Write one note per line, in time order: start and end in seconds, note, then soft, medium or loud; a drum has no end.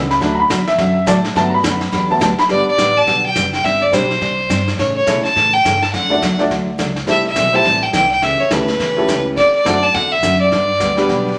0.00 0.21 C#2 loud
0.00 0.18 G3 medium
0.00 0.18 B3 medium
0.00 0.18 C#4 medium
0.11 0.38 B5 medium
0.11 snare soft
0.20 0.49 D2 medium
0.20 0.40 D3 medium
0.20 0.41 F#3 medium
0.20 0.40 F#3 medium
0.20 0.42 A3 soft
0.20 0.40 A3 medium
0.20 0.40 D4 medium
0.20 0.42 D4 medium
0.20 0.41 F#4 medium
0.20 brush sweep medium
0.20 kick soft
0.20 snare medium
0.35 0.37 A#5 medium
0.40 0.67 B5 loud
0.50 0.77 E2 medium
0.50 0.60 D3 medium
0.50 0.60 F#3 medium
0.50 0.61 A3 medium
0.50 0.61 D4 medium
0.50 0.61 F#4 medium
0.50 kick soft
0.50 snare medium
0.50 hi-hat pedal medium
0.67 1.06 E5 loud
0.67 snare soft
0.78 1.06 F#2 medium
0.78 0.97 D3 medium
0.78 0.98 F#3 medium
0.78 0.98 A3 medium
0.78 0.98 D4 medium
0.78 0.98 F#4 medium
0.78 brush sweep soft
0.78 kick soft
0.78 snare medium
1.06 1.34 A2 loud
1.06 1.17 D3 medium
1.06 1.18 F#3 medium
1.06 1.18 A3 medium
1.06 1.18 D4 medium
1.06 1.18 F#4 medium
1.06 1.23 A4 medium
1.06 1.24 D5 loud
1.06 kick soft
1.06 snare medium
1.06 hi-hat pedal medium
1.24 snare medium
1.35 1.63 G2 medium
1.35 1.54 D3 medium
1.35 1.54 F#3 medium
1.35 1.79 F#3 medium
1.35 1.79 A3 medium
1.35 1.55 B3 medium
1.35 1.79 B3 medium
1.35 1.55 D4 medium
1.35 1.55 G4 medium
1.35 1.53 A5 loud
1.35 brush sweep medium
1.35 kick soft
1.35 snare medium
1.50 1.51 A#5 medium
1.54 2.09 B5 loud
1.63 1.92 F#2 medium
1.63 1.74 D3 medium
1.63 1.74 F#3 medium
1.63 1.75 B3 medium
1.63 1.75 D4 medium
1.63 1.75 G4 medium
1.63 kick soft
1.63 snare medium
1.63 hi-hat pedal medium
1.81 snare soft
1.92 2.20 E2 medium
1.92 2.11 D3 medium
1.92 2.11 F#3 medium
1.92 2.11 B3 medium
1.92 2.12 D4 medium
1.92 2.12 G4 medium
1.92 brush sweep soft
1.92 kick soft
1.92 snare medium
2.10 2.20 F#3 medium
2.10 2.20 A3 soft
2.10 2.20 B3 medium
2.10 2.21 A5 medium
2.20 2.37 D2 loud
2.20 2.31 D3 medium
2.20 2.32 F#3 medium
2.20 2.32 B3 medium
2.20 2.32 D4 medium
2.20 2.32 G4 medium
2.20 2.38 A5 medium
2.20 kick soft
2.20 snare medium
2.20 hi-hat pedal medium
2.38 2.50 B5 loud
2.38 muted upright bass stroke soft
2.38 snare soft
2.49 2.65 G1 medium
2.49 2.68 D3 soft
2.49 2.91 G3 medium
2.49 2.69 G3 medium
2.49 2.92 B3 medium
2.49 2.69 B3 medium
2.49 2.69 D4 medium
2.49 2.92 D4 medium
2.49 2.92 G4 medium
2.49 2.69 G4 medium
2.49 2.92 B4 medium
2.49 2.67 D5 medium
2.49 brush sweep soft
2.49 kick soft
2.49 snare soft
2.67 2.98 D5 loud
2.67 muted upright bass stroke soft
2.78 3.06 A1 medium
2.78 2.89 D3 medium
2.78 2.89 G3 medium
2.78 2.89 B3 medium
2.78 2.89 D4 medium
2.78 2.89 G4 medium
2.78 kick soft
2.78 snare medium
2.78 hi-hat pedal medium
2.97 3.25 A5 loud
3.06 3.34 B1 medium
3.06 3.26 D3 medium
3.06 3.26 G3 medium
3.06 3.26 B3 medium
3.06 3.26 D4 medium
3.06 3.27 G4 medium
3.06 brush sweep soft
3.06 kick soft
3.06 snare soft
3.26 3.51 G5 medium
3.35 3.63 F#1 medium
3.35 3.46 D3 medium
3.35 3.46 G3 medium
3.35 3.46 B3 medium
3.35 3.46 D4 medium
3.35 3.46 G4 medium
3.35 kick soft
3.35 snare medium
3.35 hi-hat pedal medium
3.53 3.66 G5 medium
3.53 snare soft
3.64 3.92 G1 medium
3.64 3.83 C3 medium
3.64 3.83 G3 medium
3.64 3.83 C4 medium
3.64 3.84 D4 medium
3.64 3.84 G4 medium
3.64 3.83 E5 medium
3.64 brush sweep soft
3.64 kick soft
3.64 snare soft
3.82 3.95 D5 medium
3.92 4.20 B1 medium
3.92 4.03 C3 medium
3.92 4.08 G3 medium
3.92 4.03 G3 medium
3.92 4.08 C4 medium
3.92 4.03 C4 medium
3.92 4.08 D4 medium
3.92 4.04 D4 medium
3.92 4.08 G4 medium
3.92 4.04 G4 medium
3.92 4.08 C5 medium
3.92 4.68 C5 medium
3.92 kick soft
3.92 snare medium
3.92 hi-hat pedal medium
4.10 snare soft
4.20 4.49 C2 medium
4.20 4.40 C3 medium
4.20 4.40 G3 medium
4.20 4.40 C4 medium
4.20 4.41 D4 medium
4.20 4.41 G4 medium
4.20 brush sweep soft
4.20 kick soft
4.20 snare soft
4.49 4.77 G2 medium
4.49 4.60 C3 medium
4.49 4.60 G3 medium
4.49 4.60 C4 medium
4.49 4.61 D4 medium
4.49 4.61 G4 medium
4.49 kick soft
4.49 snare medium
4.49 hi-hat pedal medium
4.68 snare soft
4.78 5.06 A2 medium
4.78 4.98 C#3 soft
4.78 4.98 E3 soft
4.78 4.98 A3 medium
4.78 4.98 C#4 medium
4.78 4.98 A4 medium
4.78 4.95 C#5 medium
4.78 brush sweep medium
4.78 kick soft
4.78 snare soft
4.96 5.22 C#5 medium
5.06 5.23 B2 medium
5.06 5.18 C#3 medium
5.06 5.18 E3 medium
5.06 5.22 A3 medium
5.06 5.18 A3 medium
5.06 5.22 C#4 medium
5.06 5.18 C#4 medium
5.06 5.22 E4 medium
5.06 5.23 A4 medium
5.06 5.19 A4 medium
5.06 5.23 C#5 medium
5.06 kick soft
5.06 snare medium
5.06 hi-hat pedal medium
5.24 5.54 A5 loud
5.24 muted upright bass stroke soft
5.24 snare soft
5.36 5.63 A2 medium
5.36 5.55 C#3 medium
5.36 5.55 E3 medium
5.36 5.56 A3 medium
5.36 5.56 C#4 medium
5.36 5.56 A4 medium
5.36 brush sweep medium
5.36 kick soft
5.36 snare soft
5.53 5.83 G5 medium
5.64 5.92 G2 medium
5.64 5.75 C#3 medium
5.64 5.75 E3 medium
5.64 5.76 A3 medium
5.64 5.76 C#4 medium
5.64 5.76 A4 medium
5.64 kick soft
5.64 snare medium
5.64 hi-hat pedal medium
5.82 5.93 A5 medium
5.82 snare soft
5.93 6.21 F#2 medium
5.93 6.13 D3 medium
5.93 6.13 F#3 medium
5.93 6.13 A3 soft
5.93 6.13 D4 medium
5.93 6.13 F#4 medium
5.93 6.36 F#5 medium
5.93 brush sweep soft
5.93 kick soft
5.93 snare soft
6.10 6.20 A3 medium
6.10 6.20 D4 medium
6.10 6.21 F#4 medium
6.10 6.21 A4 medium
6.10 6.21 D5 medium
6.21 6.50 E2 medium
6.21 6.32 D3 medium
6.21 6.32 F#3 medium
6.21 6.33 A3 medium
6.21 6.33 D4 medium
6.21 6.33 F#4 medium
6.21 kick soft
6.21 snare medium
6.21 hi-hat pedal medium
6.39 6.49 A3 medium
6.39 6.49 D4 medium
6.39 6.49 F#4 medium
6.39 6.50 A4 medium
6.39 6.50 D5 medium
6.39 snare soft
6.50 6.78 D2 medium
6.50 6.69 D3 medium
6.50 6.70 F#3 medium
6.50 6.70 A3 medium
6.50 6.70 D4 medium
6.50 6.70 F#4 medium
6.50 brush sweep medium
6.50 kick soft
6.50 snare soft
6.78 7.07 C#2 medium
6.78 6.89 D3 medium
6.78 6.89 F#3 medium
6.78 6.90 A3 medium
6.78 6.90 D4 medium
6.78 6.90 F#4 medium
6.78 kick soft
6.78 snare medium
6.78 hi-hat pedal medium
6.96 snare soft
7.07 7.35 C2 medium
7.07 7.27 C3 medium
7.07 7.27 E3 medium
7.07 7.27 G3 medium
7.07 7.23 A3 medium
7.07 7.23 C4 medium
7.07 7.27 C4 medium
7.07 7.23 E4 medium
7.07 7.27 E4 medium
7.07 7.23 G4 medium
7.07 7.27 A4 medium
7.07 7.23 A4 medium
7.07 7.25 E5 medium
7.07 brush sweep medium
7.07 kick soft
7.07 snare soft
7.27 7.57 E5 loud
7.36 7.64 B1 medium
7.36 7.47 C3 medium
7.36 7.47 E3 medium
7.36 7.47 G3 medium
7.36 7.47 C4 medium
7.36 7.47 E4 medium
7.36 7.47 A4 medium
7.36 kick soft
7.36 snare medium
7.36 hi-hat pedal medium
7.53 7.63 A3 medium
7.53 7.63 C4 medium
7.53 7.64 E4 medium
7.53 7.64 G4 medium
7.53 7.64 C5 medium
7.53 7.84 A5 loud
7.64 7.93 A1 medium
7.64 7.84 C3 medium
7.64 7.84 E3 medium
7.64 7.84 G3 medium
7.64 7.85 C4 medium
7.64 7.85 E4 medium
7.64 7.85 A4 medium
7.64 brush sweep soft
7.64 kick soft
7.64 snare soft
7.83 7.94 G5 medium
7.93 8.21 C2 medium
7.93 8.04 C3 medium
7.93 8.05 E3 medium
7.93 8.05 G3 medium
7.93 8.05 C4 medium
7.93 8.05 E4 medium
7.93 8.05 A4 medium
7.93 8.10 G5 loud
7.93 kick soft
7.93 snare medium
7.93 hi-hat pedal soft
8.11 8.24 G5 loud
8.22 8.38 C#2 medium
8.22 8.42 C#3 medium
8.22 8.42 E3 medium
8.22 8.42 A3 medium
8.22 8.42 C#4 medium
8.22 8.42 G4 medium
8.22 8.41 E5 medium
8.22 brush sweep medium
8.22 kick soft
8.22 snare soft
8.39 8.53 C#5 medium
8.39 muted upright bass stroke soft
8.51 8.79 D2 medium
8.51 8.62 C#3 medium
8.51 8.62 E3 medium
8.51 8.66 A3 medium
8.51 8.62 A3 medium
8.51 8.67 C#4 soft
8.51 8.62 C#4 medium
8.51 8.67 E4 soft
8.51 8.67 G4 soft
8.51 8.62 G4 medium
8.51 8.67 A4 medium
8.51 9.26 B4 medium
8.51 kick soft
8.51 snare medium
8.51 hi-hat pedal medium
8.68 snare soft
8.80 9.07 E2 medium
8.80 8.99 C#3 medium
8.80 8.99 E3 medium
8.80 8.99 A3 medium
8.80 8.99 C#4 medium
8.80 9.00 G4 medium
8.80 brush sweep soft
8.80 kick soft
8.80 snare soft
8.97 9.34 A3 medium
8.97 9.35 C#4 medium
8.97 9.35 E4 medium
8.97 9.35 G4 medium
8.97 9.35 A4 medium
9.08 9.36 C#2 medium
9.08 9.19 C#3 medium
9.08 9.19 E3 medium
9.08 9.19 A3 medium
9.08 9.19 C#4 medium
9.08 9.19 G4 medium
9.08 kick soft
9.08 snare medium
9.08 hi-hat pedal soft
9.37 9.53 D2 medium
9.37 9.56 D3 soft
9.37 9.56 A3 medium
9.37 9.56 C4 medium
9.37 9.57 F#4 medium
9.37 9.57 A4 medium
9.37 9.53 D5 medium
9.37 brush sweep soft
9.37 kick soft
9.37 snare soft
9.54 9.84 D5 loud
9.54 muted upright bass stroke soft
9.65 9.93 F#2 medium
9.65 9.76 D3 medium
9.65 9.76 A3 medium
9.65 9.81 A3 medium
9.65 9.76 C4 medium
9.65 9.81 C4 medium
9.65 9.81 D4 medium
9.65 9.76 F#4 medium
9.65 9.81 F#4 medium
9.65 9.76 A4 medium
9.65 9.82 A4 medium
9.65 kick soft
9.65 snare medium
9.65 hi-hat pedal medium
9.83 9.96 A5 loud
9.94 10.22 E2 medium
9.94 10.13 D3 medium
9.94 10.14 A3 medium
9.94 10.14 C4 medium
9.94 10.14 F#4 medium
9.94 10.14 A4 medium
9.94 10.13 F#5 medium
9.94 brush sweep medium
9.94 kick soft
9.94 snare soft
10.12 10.40 E5 medium
10.23 10.51 F#2 medium
10.23 10.34 D3 medium
10.23 10.34 A3 medium
10.23 10.34 C4 medium
10.23 10.34 F#4 medium
10.23 10.34 A4 medium
10.23 kick soft
10.23 snare medium
10.23 hi-hat pedal medium
10.41 11.34 D5 medium
10.52 10.79 G2 medium
10.52 10.71 D3 medium
10.52 10.71 G3 medium
10.52 10.71 B3 medium
10.52 10.71 D4 medium
10.52 10.72 G4 medium
10.52 brush sweep medium
10.52 kick soft
10.52 snare soft
10.80 11.08 D2 medium
10.80 10.91 D3 medium
10.80 10.91 G3 medium
10.80 10.91 B3 medium
10.80 10.92 D4 medium
10.80 10.92 G4 medium
10.80 kick soft
10.80 snare medium
10.80 hi-hat pedal medium
10.97 11.35 G3 medium
10.97 11.35 B3 medium
10.97 11.35 D4 medium
10.97 11.36 G4 medium
10.97 11.36 B4 medium
10.97 snare soft
11.09 11.37 B1 medium
11.09 11.28 D3 medium
11.09 11.28 G3 medium
11.09 11.28 B3 medium
11.09 11.29 D4 medium
11.09 11.29 G4 medium
11.09 brush sweep medium
11.09 kick soft
11.09 snare soft